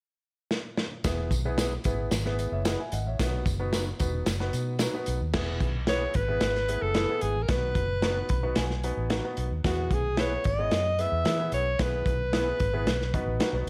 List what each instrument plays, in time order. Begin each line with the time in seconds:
0.51 snare
0.77 snare
1.04 fingered electric bass E1, grand piano B3 E4 G#4 B4, kick, snare, closed hi-hat, tambourine
1.31 fingered electric bass B1, kick, closed hi-hat, tambourine
1.45 grand piano B3 E4 G#4 B4
1.58 clean electric guitar E4 G#4 B4, snare, closed hi-hat, tambourine
1.84 fingered electric bass G#1, grand piano B3 E4 G#4 B4, kick, closed hi-hat, tambourine
2.11 fingered electric bass G#1, snare, closed hi-hat, tambourine
2.25 grand piano B3 E4 G#4 B4, snare
2.39 closed hi-hat, tambourine
2.52 fingered electric bass F#1, grand piano C#5 E5
2.65 clean electric guitar E4 G#4 B4, grand piano D#5 F#5, snare, closed hi-hat, tambourine
2.80 grand piano E5 G#5
2.92 fingered electric bass G#1, grand piano D#5 F#5, closed hi-hat, tambourine
3.06 fingered electric bass A1, grand piano C#5 E5
3.19 fingered electric bass B1, grand piano B3 D#4 F#4 B4, kick, snare, closed hi-hat, tambourine
3.46 fingered electric bass F#1, kick, closed hi-hat, tambourine
3.59 grand piano B3 D#4 F#4 B4
3.73 clean electric guitar D#4 F#4 B4, snare, closed hi-hat, tambourine
3.99 fingered electric bass E1, grand piano B3 D#4 F#4 B4, kick, closed hi-hat, tambourine
4.26 fingered electric bass F#1, snare, closed hi-hat, tambourine
4.40 grand piano B3 D#4 F#4 B4, snare
4.53 fingered electric bass B2, closed hi-hat, tambourine
4.79 clean electric guitar D#4 F#4 B4, snare, closed hi-hat, tambourine
4.94 grand piano B3 D#4 F#4 B4
5.06 fingered electric bass B1, closed hi-hat, tambourine
5.21 fingered electric bass D#2
5.33 fingered electric bass E1, grand piano B3 E4 G#4 B4, kick, snare, crash
5.60 fingered electric bass B1, kick, closed hi-hat
5.87 grand piano B3 E4 G#4 B4, clean electric guitar E4 G#4 B4, alto saxophone C#5, snare, closed hi-hat
6.14 fingered electric bass G#1, alto saxophone B4, kick, closed hi-hat
6.28 grand piano B3 E4 G#4 B4
6.41 fingered electric bass G#1, snare, closed hi-hat
6.55 snare
6.68 grand piano B3 E4 G#4 B4, closed hi-hat
6.82 fingered electric bass F#1, alto saxophone A4
6.94 clean electric guitar E4 G#4 B4, snare, closed hi-hat
7.09 grand piano B3 E4 G#4 B4
7.21 fingered electric bass G#1, alto saxophone G#4, closed hi-hat
7.36 fingered electric bass A1
7.43 alto saxophone A#4
7.48 fingered electric bass B1, grand piano B3 D#4 F#4 B4, alto saxophone B4, kick, snare, closed hi-hat
7.75 fingered electric bass F#1, kick, closed hi-hat
8.02 grand piano B3 D#4 F#4 B4, clean electric guitar D#4 F#4 B4, snare, closed hi-hat
8.29 fingered electric bass B1, grand piano B5, kick, closed hi-hat
8.43 grand piano B3 D#4 F#4 B4
8.55 fingered electric bass B1, grand piano G#5, snare, closed hi-hat
8.70 snare
8.83 grand piano B3 D#4 F#4 B4, closed hi-hat
8.97 fingered electric bass A1
9.10 clean electric guitar D#4 F#4 B4, grand piano F#5, snare, closed hi-hat
9.25 grand piano B3 D#4 F#4 B4
9.37 fingered electric bass B1, closed hi-hat
9.51 fingered electric bass D#2
9.64 fingered electric bass E2, grand piano B3 E4 G#4 B4, alto saxophone F#4, kick, snare, closed hi-hat
9.91 fingered electric bass B1, alto saxophone G#4, kick, closed hi-hat
10.17 grand piano B3 E4 G#4 B4, clean electric guitar E4 G#4 B4, alto saxophone C#5, snare, closed hi-hat
10.44 fingered electric bass G#1, alto saxophone D#5, kick, closed hi-hat
10.59 grand piano B3 E4 G#4 C#5
10.71 fingered electric bass F#2, snare, closed hi-hat
10.99 grand piano B3 E4 G#4 B4, alto saxophone E5, closed hi-hat
11.12 fingered electric bass E2
11.25 fingered electric bass E3, clean electric guitar E4 G#4 B4, snare, closed hi-hat
11.39 grand piano B3 E4 G#4 B4
11.52 fingered electric bass B1, alto saxophone C#5, closed hi-hat
11.79 fingered electric bass B1, grand piano B3 E4 G#4 B4, alto saxophone B4, kick, snare, closed hi-hat
12.06 fingered electric bass B1, kick, closed hi-hat
12.33 grand piano B3 E4 G#4 B4, clean electric guitar E4 G#4 B4, snare, closed hi-hat
12.60 fingered electric bass G#1, kick, closed hi-hat
12.73 grand piano B3 E4 G#4 B4
12.86 fingered electric bass B1, snare, closed hi-hat
13.01 snare
13.14 grand piano B3 D#4 F#4 B4 D#5, kick, closed hi-hat
13.26 fingered electric bass A1
13.40 clean electric guitar D#4 F#4 B4, grand piano F#5, snare, closed hi-hat
13.53 fingered electric bass B1, grand piano B3 D#4 F#4 B4